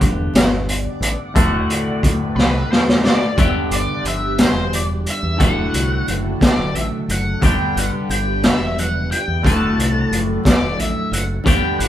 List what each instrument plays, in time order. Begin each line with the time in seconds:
Already playing: clean electric guitar G2 D3 G3 B3 D4 G4
0.01 fingered electric bass E1, kick, closed hi-hat
0.34 fingered electric bass G1, snare, closed hi-hat, high conga, low conga
0.67 string machine D5, closed hi-hat
0.84 low conga
0.99 fingered electric bass A1, string machine E5, closed hi-hat
1.14 string machine F#5
1.18 low conga
1.34 fingered electric bass D1, clean electric guitar D2 A2 D3 A3 F#4, kick, closed hi-hat, high conga, low conga
1.62 string machine D5
1.70 closed hi-hat
1.86 low conga
1.98 string machine C5
2.03 fingered electric bass D2, kick, closed hi-hat
2.15 string machine B4
2.29 string machine A4
2.35 fingered electric bass C2, lead electric guitar B4, snare, high conga, low conga
2.66 string machine D5
2.72 lead electric guitar C5, snare
2.87 snare, low conga
3.05 lead electric guitar D5, snare
3.36 fingered electric bass G1, clean electric guitar G2 D3 G3 B3 D4, string machine G3 D4 B5, lead electric guitar E5, kick, closed hi-hat, high conga, low conga
3.40 clean electric guitar G4
3.71 fingered electric bass G1, lead electric guitar D5, closed hi-hat
3.88 low conga
4.04 fingered electric bass G1, closed hi-hat, high conga
4.08 lead electric guitar E5
4.38 lead electric guitar C5, snare, closed hi-hat, low conga
4.53 fingered electric bass E1
4.73 lead electric guitar D5, closed hi-hat
4.89 low conga
5.06 closed hi-hat, low conga
5.10 lead electric guitar E5
5.23 fingered electric bass E2
5.37 fingered electric bass D1, clean electric guitar D2 A2 D3 A3 F#4, string machine F#3 A3 A4, kick, closed hi-hat, high conga, low conga
5.43 lead electric guitar F#5
5.73 fingered electric bass C2, closed hi-hat, low conga
6.07 fingered electric bass F#1, closed hi-hat, high conga
6.41 kick, snare, closed hi-hat, low conga
6.46 lead electric guitar D5
6.57 fingered electric bass D1
6.74 fingered electric bass A1, lead electric guitar E5, closed hi-hat
6.91 low conga
7.08 fingered electric bass F#1, lead electric guitar F#5, closed hi-hat, low conga
7.40 fingered electric bass G1, clean electric guitar G2 D3 G3 B3 D4, string machine G3 B3 B4, kick, closed hi-hat, high conga, low conga
7.44 clean electric guitar G4, lead electric guitar G5
7.75 fingered electric bass G1, lead electric guitar F#5, closed hi-hat
7.92 low conga
8.09 fingered electric bass G1, lead electric guitar G5, closed hi-hat, high conga
8.42 lead electric guitar E5, snare, closed hi-hat, low conga
8.61 fingered electric bass E1
8.76 lead electric guitar F#5, closed hi-hat, high conga
8.93 low conga
9.11 lead electric guitar G5, closed hi-hat, low conga
9.28 fingered electric bass E2
9.42 fingered electric bass D1, clean electric guitar D2 A2 D3 A3, string machine F#3 A3 A4, kick, high conga, low conga
9.46 clean electric guitar F#4, lead electric guitar A5, closed hi-hat
9.77 fingered electric bass C2, closed hi-hat
9.94 low conga
10.11 fingered electric bass F#1, closed hi-hat, high conga, low conga
10.28 low conga
10.44 lead electric guitar D5, kick, snare, closed hi-hat, low conga
10.61 fingered electric bass D1, low conga
10.78 fingered electric bass A1, lead electric guitar E5, closed hi-hat, high conga
11.11 fingered electric bass F#1, lead electric guitar F#5, closed hi-hat
11.44 fingered electric bass G1, clean electric guitar G2 D3 G3 B3 D4 G4, kick, closed hi-hat, high conga, low conga
11.48 string machine G3 B3 B4, lead electric guitar G5
11.78 fingered electric bass G1, lead electric guitar F#5, closed hi-hat, low conga